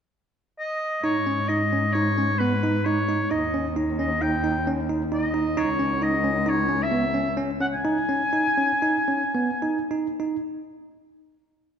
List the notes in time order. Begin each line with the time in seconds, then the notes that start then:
0.59 D#5
1.03 G#2 D#4 C#5
1.27 C#4
1.48 D#4 D#5
1.73 C#4
1.93 D#4 C#5
2.18 C#4
2.38 B3 B4
2.63 D#4
2.85 D#4 C#5
3.09 D#4
3.31 D#2 D#4 D#5
3.54 C#4
3.76 D#4
3.99 C#4 D#5
4.22 D#4 G5
4.44 D#4
4.67 C#4
4.89 D#4
5.12 D#4 D#5
5.34 D#4
5.57 C#2 D#4 C#5
5.79 C#4
6.02 D#4 D#5
6.24 C#4
6.46 D#4 C#5
6.69 C#4
6.83 E5
6.92 B3
7.14 C#4
7.37 C#4
7.60 C#4 F#5
7.73 G#5
7.85 D#4
8.09 C#4
8.33 D#4
8.58 C#4
8.82 D#4
9.08 C#4
9.35 B3
9.62 D#4
9.91 D#4
10.20 D#4